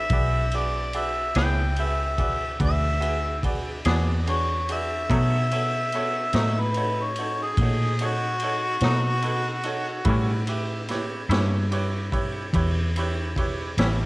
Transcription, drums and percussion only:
0.10 kick loud
0.10 ride medium
0.51 ride medium
0.93 ride medium
1.35 snare loud
1.35 ride medium
1.76 ride medium
2.18 kick medium
2.18 ride medium
2.60 kick loud
2.60 ride medium
3.02 ride medium
3.43 kick medium
3.43 ride medium
3.85 snare loud
3.85 ride medium
4.27 ride medium
4.69 ride medium
5.10 kick loud
5.10 ride medium
5.51 ride medium
5.92 ride medium
6.33 snare loud
6.33 ride medium
6.74 ride medium
7.16 ride medium
7.57 kick loud
7.57 ride medium
7.99 ride medium
8.40 ride medium
8.81 snare loud
8.81 ride medium
9.22 ride medium
9.63 ride medium
10.05 kick loud
10.05 ride medium
10.47 ride medium
10.88 snare soft
10.88 ride medium
11.31 snare loud
11.31 ride medium
11.72 ride medium
12.12 kick medium
12.12 ride medium
12.54 kick loud
12.54 ride medium
12.96 ride medium
13.36 kick medium
13.36 ride medium
13.78 snare loud
13.78 ride medium

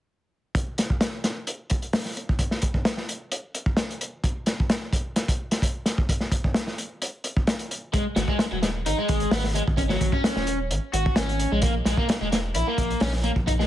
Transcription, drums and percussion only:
0.55 kick loud
0.55 closed hi-hat medium
0.78 snare soft
0.78 closed hi-hat medium
0.90 kick medium
1.01 snare loud
1.01 closed hi-hat medium
1.24 snare medium
1.24 closed hi-hat medium
1.47 closed hi-hat medium
1.70 kick medium
1.70 closed hi-hat medium
1.82 closed hi-hat soft
1.93 snare loud
1.93 open hi-hat medium
2.05 snare soft
2.17 closed hi-hat medium
2.29 kick medium
2.39 kick medium
2.39 closed hi-hat medium
2.51 snare soft
2.62 kick medium
2.62 closed hi-hat medium
2.74 kick medium
2.85 snare loud
2.85 closed hi-hat medium
2.97 snare soft
3.09 closed hi-hat medium
3.32 closed hi-hat medium
3.55 closed hi-hat medium
3.66 kick medium
3.77 snare loud
3.77 closed hi-hat medium
3.90 closed hi-hat soft
4.01 closed hi-hat medium
4.24 kick loud
4.24 closed hi-hat medium
4.46 snare soft
4.46 closed hi-hat medium
4.60 kick medium
4.70 snare loud
4.70 closed hi-hat medium
4.93 kick medium
4.93 closed hi-hat medium
5.16 snare soft
5.16 closed hi-hat medium
5.28 kick medium
5.28 closed hi-hat medium
5.51 snare soft
5.51 closed hi-hat medium
5.62 kick medium
5.62 closed hi-hat medium
5.86 snare soft
5.86 closed hi-hat medium
5.98 kick medium
6.09 kick loud
6.09 closed hi-hat medium
6.20 snare soft
6.32 kick medium
6.32 closed hi-hat medium
6.44 kick medium
6.54 snare loud
6.54 closed hi-hat medium
6.67 snare soft
6.78 closed hi-hat medium
7.02 closed hi-hat medium
7.24 closed hi-hat medium
7.37 kick medium
7.47 snare loud
7.47 closed hi-hat medium
7.59 closed hi-hat soft
7.71 closed hi-hat medium
7.94 kick loud
7.94 closed hi-hat medium
8.16 snare medium
8.16 closed hi-hat medium
8.28 kick medium
8.39 snare loud
8.39 closed hi-hat medium
8.62 snare soft
8.62 closed hi-hat medium
8.86 closed hi-hat medium
9.09 kick medium
9.09 closed hi-hat medium
9.20 closed hi-hat soft
9.31 snare loud
9.31 open hi-hat medium
9.44 snare soft
9.55 closed hi-hat medium
9.68 kick medium
9.77 kick medium
9.77 closed hi-hat medium
9.89 snare soft
10.01 kick medium
10.01 closed hi-hat medium
10.12 kick loud
10.24 snare loud
10.24 closed hi-hat medium
10.36 snare soft
10.47 closed hi-hat medium
10.71 closed hi-hat medium
10.94 closed hi-hat medium
11.06 kick medium
11.16 snare loud
11.16 closed hi-hat medium
11.29 closed hi-hat soft
11.39 closed hi-hat medium
11.62 kick loud
11.62 closed hi-hat medium
11.85 snare soft
11.85 closed hi-hat medium
11.97 kick loud
12.09 snare loud
12.09 closed hi-hat medium
12.32 snare medium
12.32 closed hi-hat medium
12.54 closed hi-hat medium
12.78 kick medium
12.78 closed hi-hat medium
12.90 closed hi-hat soft
13.00 snare loud
13.00 open hi-hat medium
13.13 snare soft
13.24 closed hi-hat medium
13.36 kick medium
13.47 kick loud
13.47 closed hi-hat medium
13.60 snare soft

